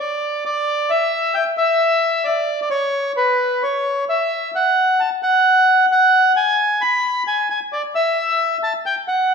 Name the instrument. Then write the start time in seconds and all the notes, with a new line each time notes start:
bandoneon
0.00 D5
0.45 D5
0.90 E5
1.34 G5
1.58 E5
2.25 D5
2.62 D5
2.70 C#5
3.17 B4
3.63 C#5
4.09 E5
4.55 F#5
5.00 A5
5.23 F#5
5.92 F#5
6.36 G#5
6.81 B5
7.27 G#5
7.50 G#5
7.73 D5
7.95 E5
8.63 A5
8.86 G5
9.08 F#5